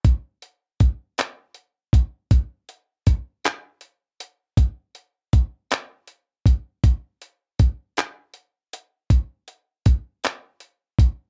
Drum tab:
HH |xxxxxx|xxxxxx|xxxxxx|xxxxxx|
CP |---x--|---x--|---x--|---x--|
BD |o-o--o|o-o---|o-o--o|o-o---|

HH |xxxxxx|
CP |---x--|
BD |o-o--o|